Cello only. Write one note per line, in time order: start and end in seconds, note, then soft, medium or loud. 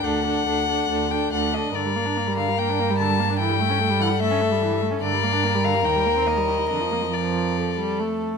0.04 0.42 D2 soft
0.47 0.85 D2 soft
0.90 1.27 D2 soft
1.32 1.70 D2 soft
1.75 4.99 G2 soft
5.03 5.86 G2 soft
5.85 6.71 D#2 soft
6.70 8.22 F2 soft